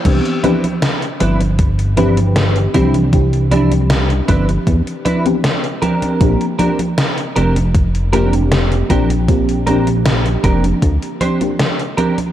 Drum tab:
CC |x---------------|----------------|----------------|----------------|
HH |xxxxxxxxxxxxxxxx|xxxxxxxxxxxxxxxx|xxxxxxxxxxxxxxxx|xxxxxxxxxxxxxxxx|
SD |----o-------o---|----o-------o---|----o-------o---|----o-------o---|
CG |o-ooo-ooo-ooo-oo|o-ooo-ooo-ooo-oo|o-ooo-ooo-ooo-oo|o-ooo-ooo-ooo-oo|
BD |o-------o-----o-|o-----o-o-------|o-------o-----o-|o-----o-o-------|